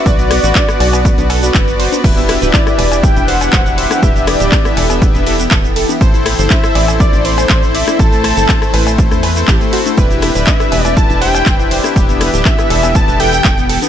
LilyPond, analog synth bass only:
\new Staff \with { instrumentName = "Analog synth bass" } { \clef bass \time 4/4 \key e \minor \tempo 4 = 121 b,,8. a,,16 r8 b,,8. b,,8. fis,,8. r16 | e,,8. d,,16 r8 e,,8. e,,8. e,,8. r16 | e,,8. d,,16 r8 e,,8. e,,8. e,,8. r16 | a,,8. g,,16 r8 a,,8. a,,8. a,,8. r16 |
a,,8. g,,16 r8 a,,8. e,8. a,,16 r8. | e,,8. d,,16 r8 e,,8. e,,8. e,,8. r16 | e,,8. d,,16 r8 e,,8. e,,8. e,,8. r16 | }